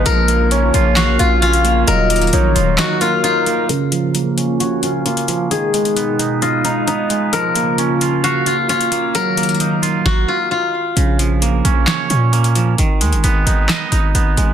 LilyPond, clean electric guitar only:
\new Staff \with { instrumentName = "Clean electric guitar" } { \time 4/4 \key bes \phrygian \tempo 4 = 132 f8 bes8 des'8 f'8 f''8 f'8 des'8 bes8 | ges8 bes8 ees'8 f'8 ges8 f'8 ees'8 bes8 | des8 f8 bes8 des'8 des''8 des'8 bes8 f8 | ees8 aes8 ces'8 ees'8 ees''8 ees'8 ces'8 aes8 |
f8 bes8 des'8 f'8 f''8 f'8 des'8 bes8 | ges8 bes8 ees'8 f'2~ f'8 | des8 f8 bes8 des'8 des''8 des'8 bes8 f8 | ees8 aes8 ces'8 ees'8 ees''8 ees'8 ces'8 aes8 | }